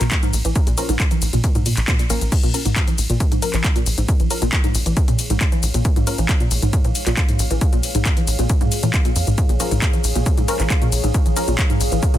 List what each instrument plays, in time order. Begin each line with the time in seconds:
0.01 analog synth bass A#1, synth arpeggio sound A#2, clap, closed hi-hat, shaker
0.11 kick, clap, closed hi-hat, ride, shaker
0.23 synth arpeggio sound G#2, closed hi-hat, shaker
0.33 analog synth bass A#1, open hi-hat, ride, shaker
0.45 analog synth bass A#1, synth arpeggio sound E3, closed hi-hat, shaker
0.56 kick, closed hi-hat, ride, shaker
0.67 analog synth bass A#1, synth arpeggio sound A#2, closed hi-hat, shaker
0.78 synth stab F3 C#4 A#4, open hi-hat, ride, shaker
0.89 analog synth bass A#1, synth arpeggio sound G#2, closed hi-hat, shaker
1.00 kick, clap, closed hi-hat, ride, shaker
1.11 synth arpeggio sound E3, closed hi-hat, shaker
1.22 analog synth bass A#1, open hi-hat, ride, shaker
1.33 analog synth bass A#1, synth arpeggio sound A#2, closed hi-hat, shaker
1.44 kick, closed hi-hat, ride, shaker
1.55 synth arpeggio sound G#2, analog synth bass A#2, closed hi-hat, shaker
1.66 synth arpeggio sound A#2, open hi-hat, ride, shaker
1.77 analog synth bass A#1, clap, closed hi-hat, shaker
1.88 synth arpeggio sound A#2, kick, clap, closed hi-hat, ride, shaker
1.99 synth arpeggio sound A#2, closed hi-hat, shaker
2.10 analog synth bass A#1, synth stab F3 C#4 A#4, synth arpeggio sound A#3, open hi-hat, ride, shaker
2.21 analog synth bass A#1, closed hi-hat, shaker
2.32 ambient pad G#4, kick, closed hi-hat, crash, ride, shaker
2.43 analog synth bass A#1, synth arpeggio sound A#2, closed hi-hat, shaker
2.54 synth stab F3 C#4 A#4, open hi-hat, ride, shaker
2.66 analog synth bass A#1, synth arpeggio sound G#2, closed hi-hat, shaker
2.76 kick, clap, closed hi-hat, ride, shaker
2.81 ambient pad C#5
2.88 synth arpeggio sound E3, closed hi-hat, shaker
2.98 analog synth bass A#1, open hi-hat, ride, shaker
3.10 analog synth bass A#1, synth arpeggio sound A#2, closed hi-hat, shaker
3.20 kick, closed hi-hat, ride, shaker
3.32 synth arpeggio sound G#2, analog synth bass A#2, closed hi-hat, shaker
3.40 synth stab F3 C#4 A#4, ambient pad F5, open hi-hat, ride, shaker
3.54 analog synth bass A#1, synth arpeggio sound E3, clap, closed hi-hat, shaker
3.64 kick, clap, closed hi-hat, ride, shaker
3.76 synth arpeggio sound A#2, closed hi-hat, shaker
3.86 analog synth bass A#1, open hi-hat, ride, shaker
3.98 analog synth bass A#1, synth arpeggio sound G#2, closed hi-hat, shaker
4.08 kick, closed hi-hat, ride, shaker
4.20 analog synth bass A#1, synth arpeggio sound E3, closed hi-hat, shaker
4.30 synth stab F3 C#4 A#4, open hi-hat, ride, shaker
4.42 analog synth bass A#1, synth arpeggio sound A#2, closed hi-hat, shaker
4.53 kick, clap, closed hi-hat, ride, shaker
4.64 synth arpeggio sound G#2, closed hi-hat, shaker
4.75 analog synth bass A#1, open hi-hat, ride, shaker
4.86 analog synth bass A#1, synth arpeggio sound E3, closed hi-hat, shaker
4.97 kick, closed hi-hat, ride, shaker
5.08 synth arpeggio sound A#2, analog synth bass A#2, closed hi-hat, shaker
5.19 open hi-hat, ride, shaker
5.30 analog synth bass A#1, synth arpeggio sound G#2, closed hi-hat, shaker
5.41 kick, clap, closed hi-hat, ride, shaker
5.52 synth arpeggio sound E3, closed hi-hat, shaker
5.63 analog synth bass A#1, open hi-hat, ride, shaker
5.74 analog synth bass A#1, synth arpeggio sound A#2, closed hi-hat, shaker
5.85 kick, closed hi-hat, ride, shaker
5.96 analog synth bass A#1, synth arpeggio sound G#2, closed hi-hat, shaker
6.07 synth stab F3 C#4 A#4, open hi-hat, ride, shaker
6.18 analog synth bass A#1, synth arpeggio sound E3, closed hi-hat, shaker
6.29 kick, clap, closed hi-hat, ride, shaker
6.40 synth arpeggio sound A#2, closed hi-hat, shaker
6.51 analog synth bass A#1, open hi-hat, ride, shaker
6.62 analog synth bass A#1, synth arpeggio sound G#2, closed hi-hat, shaker
6.73 kick, closed hi-hat, ride, shaker
6.84 analog synth bass A#2, synth arpeggio sound E3, closed hi-hat, shaker
6.95 open hi-hat, ride, shaker
7.07 analog synth bass A#1, synth arpeggio sound A#2, clap, closed hi-hat, shaker
7.17 kick, clap, closed hi-hat, ride, shaker
7.29 synth arpeggio sound G#2, closed hi-hat, shaker
7.39 analog synth bass A#1, open hi-hat, ride, shaker
7.51 analog synth bass A#1, synth arpeggio sound E3, closed hi-hat, shaker
7.61 kick, closed hi-hat, ride, shaker
7.73 analog synth bass A#1, synth arpeggio sound A#2, closed hi-hat, shaker
7.83 open hi-hat, ride, shaker
7.95 analog synth bass A#1, synth arpeggio sound G#2, closed hi-hat, shaker
8.05 kick, clap, closed hi-hat, ride, shaker
8.17 synth arpeggio sound E3, closed hi-hat, shaker
8.27 analog synth bass A#1, open hi-hat, ride, shaker
8.39 analog synth bass A#1, synth arpeggio sound A#2, closed hi-hat, shaker
8.50 kick, closed hi-hat, ride, shaker
8.61 synth arpeggio sound G#2, analog synth bass A#2, closed hi-hat, shaker
8.72 open hi-hat, ride, shaker
8.83 analog synth bass A#2, synth arpeggio sound E3, closed hi-hat, shaker
8.94 kick, clap, closed hi-hat, ride, shaker
9.05 synth arpeggio sound A#2, closed hi-hat, shaker
9.16 analog synth bass F2, open hi-hat, ride, shaker
9.27 analog synth bass A#1, synth arpeggio sound G#2, closed hi-hat, shaker
9.38 kick, closed hi-hat, ride, shaker
9.49 analog synth bass A#1, synth arpeggio sound A#2, closed hi-hat, shaker
9.60 synth stab F3 C#4 A#4, open hi-hat, ride, shaker
9.71 analog synth bass A#1, synth arpeggio sound G#2, closed hi-hat, shaker
9.82 kick, clap, closed hi-hat, ride, shaker
9.93 synth arpeggio sound E3, closed hi-hat, shaker
10.04 analog synth bass A#1, open hi-hat, ride, shaker
10.15 analog synth bass A#1, synth arpeggio sound A#2, closed hi-hat, shaker
10.26 kick, closed hi-hat, ride, shaker
10.38 synth arpeggio sound G#2, analog synth bass A#2, closed hi-hat, shaker
10.48 synth stab F3 C#4 A#4, open hi-hat, ride, shaker
10.60 analog synth bass A#1, synth arpeggio sound E3, clap, closed hi-hat, shaker
10.70 kick, clap, closed hi-hat, ride, shaker
10.82 synth arpeggio sound A#2, closed hi-hat, shaker
10.92 analog synth bass A#1, open hi-hat, ride, shaker
11.04 analog synth bass A#1, synth arpeggio sound G#2, closed hi-hat, shaker
11.14 kick, closed hi-hat, ride, shaker
11.26 analog synth bass A#1, synth arpeggio sound E3, closed hi-hat, shaker
11.36 synth stab F3 C#4 A#4, open hi-hat, ride, shaker
11.48 analog synth bass A#1, synth arpeggio sound A#2, closed hi-hat, shaker
11.59 kick, clap, closed hi-hat, ride, shaker
11.70 synth arpeggio sound G#2, closed hi-hat, shaker
11.81 analog synth bass A#1, open hi-hat, ride, shaker
11.92 analog synth bass A#1, synth arpeggio sound E3, closed hi-hat, shaker
12.03 kick, closed hi-hat, ride, shaker
12.14 synth arpeggio sound A#2, analog synth bass A#2, closed hi-hat, shaker